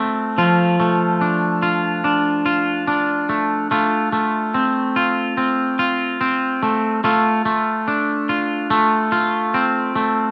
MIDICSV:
0, 0, Header, 1, 2, 480
1, 0, Start_track
1, 0, Tempo, 833333
1, 218, Time_signature, 4, 2, 24, 8
1, 5939, End_track
2, 0, Start_track
2, 0, Title_t, "Clean electric guitar"
2, 0, Program_c, 0, 27
2, 0, Note_on_c, 0, 57, 58
2, 0, Note_on_c, 0, 60, 64
2, 0, Note_on_c, 0, 65, 68
2, 218, Note_on_c, 0, 53, 83
2, 219, Note_off_c, 0, 65, 0
2, 221, Note_on_c, 0, 65, 67
2, 266, Note_off_c, 0, 60, 0
2, 457, Note_off_c, 0, 57, 0
2, 459, Note_on_c, 0, 57, 61
2, 699, Note_on_c, 0, 62, 62
2, 934, Note_off_c, 0, 65, 0
2, 936, Note_on_c, 0, 65, 67
2, 1174, Note_off_c, 0, 62, 0
2, 1177, Note_on_c, 0, 62, 67
2, 1413, Note_off_c, 0, 65, 0
2, 1415, Note_on_c, 0, 65, 70
2, 1654, Note_off_c, 0, 62, 0
2, 1656, Note_on_c, 0, 62, 63
2, 1894, Note_off_c, 0, 57, 0
2, 1896, Note_on_c, 0, 57, 62
2, 2135, Note_off_c, 0, 57, 0
2, 2137, Note_on_c, 0, 57, 73
2, 2140, Note_off_c, 0, 65, 0
2, 2142, Note_on_c, 0, 65, 61
2, 2234, Note_off_c, 0, 53, 0
2, 2374, Note_off_c, 0, 57, 0
2, 2376, Note_on_c, 0, 57, 60
2, 2615, Note_off_c, 0, 62, 0
2, 2617, Note_on_c, 0, 60, 66
2, 2856, Note_off_c, 0, 65, 0
2, 2858, Note_on_c, 0, 65, 68
2, 3088, Note_off_c, 0, 60, 0
2, 3095, Note_on_c, 0, 60, 65
2, 3333, Note_off_c, 0, 65, 0
2, 3335, Note_on_c, 0, 65, 74
2, 3568, Note_off_c, 0, 60, 0
2, 3575, Note_on_c, 0, 60, 68
2, 3814, Note_off_c, 0, 57, 0
2, 3816, Note_on_c, 0, 57, 63
2, 4052, Note_off_c, 0, 57, 0
2, 4055, Note_on_c, 0, 57, 82
2, 4057, Note_off_c, 0, 65, 0
2, 4059, Note_on_c, 0, 65, 71
2, 4105, Note_off_c, 0, 60, 0
2, 4291, Note_off_c, 0, 57, 0
2, 4294, Note_on_c, 0, 57, 67
2, 4537, Note_on_c, 0, 62, 71
2, 4774, Note_off_c, 0, 65, 0
2, 4776, Note_on_c, 0, 65, 72
2, 5011, Note_off_c, 0, 57, 0
2, 5014, Note_on_c, 0, 57, 85
2, 5250, Note_off_c, 0, 65, 0
2, 5253, Note_on_c, 0, 65, 75
2, 5494, Note_off_c, 0, 62, 0
2, 5496, Note_on_c, 0, 60, 72
2, 5732, Note_off_c, 0, 57, 0
2, 5734, Note_on_c, 0, 57, 69
2, 5939, Note_off_c, 0, 57, 0
2, 5939, Note_off_c, 0, 60, 0
2, 5939, Note_off_c, 0, 65, 0
2, 5939, End_track
0, 0, End_of_file